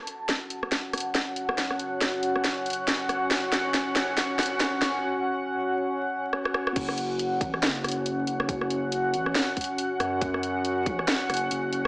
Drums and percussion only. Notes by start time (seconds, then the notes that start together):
0.07 closed hi-hat
0.29 kick, snare, closed hi-hat
0.50 closed hi-hat
0.63 cross-stick
0.72 kick, snare, closed hi-hat
0.93 cross-stick, closed hi-hat
0.98 closed hi-hat
1.00 closed hi-hat
1.15 kick, snare, closed hi-hat
1.36 closed hi-hat
1.49 cross-stick
1.58 kick, snare, closed hi-hat
1.71 cross-stick
1.79 closed hi-hat
2.01 kick, snare, closed hi-hat
2.23 closed hi-hat
2.36 cross-stick
2.44 kick, snare, closed hi-hat
2.66 closed hi-hat
2.70 closed hi-hat
2.73 closed hi-hat
2.88 kick, snare, closed hi-hat
3.09 cross-stick, closed hi-hat
3.31 kick, snare, closed hi-hat
3.52 snare, closed hi-hat
3.74 kick, snare, closed hi-hat
3.96 snare, closed hi-hat
4.17 kick, snare, closed hi-hat
4.39 snare, closed hi-hat
4.43 closed hi-hat
4.46 closed hi-hat
4.60 kick, snare, closed hi-hat
4.82 snare, closed hi-hat
6.33 cross-stick
6.45 cross-stick
6.54 cross-stick
6.67 cross-stick
6.76 kick, closed hi-hat, crash
6.89 cross-stick
6.98 closed hi-hat
7.19 closed hi-hat
7.41 kick, closed hi-hat
7.54 cross-stick
7.63 snare, closed hi-hat
7.84 cross-stick, closed hi-hat
7.88 closed hi-hat
7.92 closed hi-hat
8.06 closed hi-hat
8.27 closed hi-hat
8.40 cross-stick
8.49 kick, closed hi-hat
8.61 cross-stick
8.70 closed hi-hat
8.92 closed hi-hat
9.14 closed hi-hat
9.26 cross-stick
9.35 snare, closed hi-hat
9.57 kick, closed hi-hat
9.61 closed hi-hat
9.64 closed hi-hat
9.78 closed hi-hat
10.00 cross-stick, closed hi-hat
10.22 kick, closed hi-hat
10.34 cross-stick
10.43 closed hi-hat
10.65 closed hi-hat
10.86 kick, closed hi-hat
10.99 cross-stick
11.08 snare, closed hi-hat
11.30 cross-stick, closed hi-hat
11.34 closed hi-hat
11.37 closed hi-hat
11.51 closed hi-hat
11.73 closed hi-hat